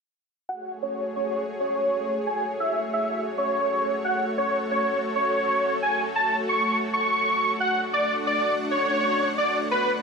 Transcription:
0.49 A3 F#4 G#4 C#5 F#5
0.82 C#5
1.16 C#5
1.60 C#5
2.27 G#5
2.60 E5
2.93 E5
3.38 C#5
4.05 A4 F#5
4.38 C#5
4.71 C#5
5.16 C#5
5.82 G#5
6.16 A5
6.49 C#6
6.93 C#6
7.60 D4 F#5
7.93 D5
8.27 D5
8.71 C#5
9.38 D5
9.71 B4

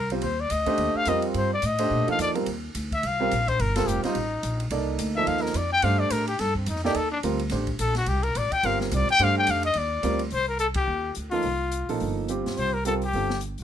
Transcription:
Already playing: C2 A#4
0.10 G3 C4 F4 C5, ride
0.22 D#2 C5, ride
0.40 D5
0.50 D2 D#5, hi-hat pedal, ride
0.66 A3 D4 G4 C5, kick, ride
0.78 D#2, ride
0.95 F5, muted upright bass stroke
1.05 F2 G3 C4 F4 A#4 D#5, hi-hat pedal, ride
1.22 ride
1.34 G2 C5, ride
1.53 D5
1.62 A2, hi-hat pedal, ride
1.66 D#5
1.78 A3 D4 G4 C5, ride
1.91 A#2
2.08 F3 A#3 D#4 A4 F5, muted upright bass stroke, ride
2.19 F2 D5, hi-hat pedal, ride
2.34 G3 C4 F4 A#4, ride
2.46 D#2, ride
2.75 D2, hi-hat pedal, ride
2.92 E5, kick, ride
3.03 C2 F5, ride
3.20 G3 C4 F4 A#4
3.31 A#1, hi-hat pedal, ride
3.48 C5, kick, ride
3.59 G1 A#4, ride
3.76 G3 C4 F4 A4 A#4, snare, ride
3.87 F1 G4, hi-hat pedal
4.03 G3 C4 D#4 F4 C5, snare, ride
4.15 A1, ride
4.43 A#1, hi-hat pedal, ride
4.60 ride
4.70 C2 A#3 D#4 A4 D5, ride
4.99 D2, hi-hat pedal, ride
5.16 F3 A#3 D#4 A4 E5
5.26 D#2 F5, ride
5.37 snare
5.42 A#4, snare
5.54 F2 D5, hi-hat pedal, ride
5.73 G5
5.82 G2 A3 D4 G4 C5 F5, ride
5.99 D5
6.10 A2 A#4, hi-hat pedal, ride
6.27 G4, ride
6.39 G2 A4, snare, ride
6.55 C4, kick
6.66 F2 D#4, hi-hat pedal, ride
6.75 snare
6.84 A#3 D#4 G4 A4 D5, snare
6.95 D#2 A4, ride
7.12 D4
7.23 D2 G3 C4 F4 A#4, hi-hat pedal, ride
7.39 ride
7.50 A1 A3 D4 G4 C5, snare, ride
7.67 kick, ride
7.79 A#1 A4, hi-hat pedal, ride
7.95 F#4, snare, ride
8.06 C2 G4, ride
8.23 A#4, ride
8.35 A1 D5, hi-hat pedal, ride
8.52 G5, muted upright bass stroke, kick, ride
8.63 G1 G3 C4 F4 A#4 F5, ride
8.81 A#4, snare
8.91 C2 D5, hi-hat pedal, ride
9.09 G5, ride
9.19 G2 A3 D4 G4 C5, ride
9.24 F5
9.38 G5
9.47 F2 F5, hi-hat pedal, ride
9.63 D#5, ride
9.74 D#2, ride
9.78 D5
10.03 D2 G3 C4 F4 A#4, hi-hat pedal, ride
10.19 ride
10.30 C2 C5, open hi-hat
10.48 A#4
10.59 A4, closed hi-hat
10.74 G4, kick, ride
10.88 D#2
11.15 D2, closed hi-hat
11.31 F3 A#3 D#4 F4 A4, open hi-hat
11.43 C2, open hi-hat
11.72 closed hi-hat
11.89 A#1 F3 A#3 D#4 A4, open hi-hat
12.00 G1, open hi-hat
12.28 G3 C4 F4 G4, closed hi-hat
12.46 C#2, snare, open hi-hat
12.57 C2 C5, open hi-hat
12.73 A#4
12.85 G3 C4 F4 A4 A#4, closed hi-hat
13.02 G4, open hi-hat
13.13 G1 G3 C4 F4 A4, open hi-hat
13.30 snare
13.41 closed hi-hat
13.58 A#1, open hi-hat

